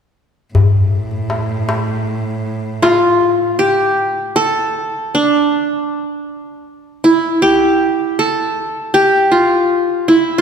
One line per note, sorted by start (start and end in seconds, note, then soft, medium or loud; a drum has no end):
0.54 3.67 A2 soft
0.54 darbuka dum medium
1.11 darbuka ka soft
1.30 darbuka tek soft
1.49 darbuka ka soft
1.69 darbuka tek medium
1.87 darbuka ka soft
2.82 4.17 F4 medium
2.82 darbuka tek medium
3.21 darbuka ka soft
3.59 4.84 G4 medium
4.36 5.53 A4 medium
5.15 6.64 D4 medium
7.04 8.43 E4 medium
7.42 8.68 G4 medium
8.19 9.36 A4 medium
8.94 10.19 G4 medium
9.31 10.14 F4 medium
10.08 10.41 E4 medium
10.38 10.41 F4 medium